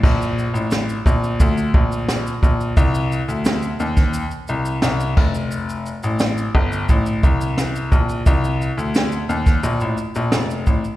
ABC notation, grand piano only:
X:1
M:4/4
L:1/16
Q:1/4=87
K:Cdor
V:1 name="Grand piano" clef=bass
B,,,3 A,,,3 B,,,2 D,,2 B,,,4 B,,,2 | C,,3 D,,3 E,,3 z C,,2 C,,2 F,,,2- | F,,,3 A,,,3 G,,,2 A,,,2 C,,4 B,,,2 | C,,3 D,,3 E,,2 B,,, A,,, z B,,, F,,,2 A,,, z |]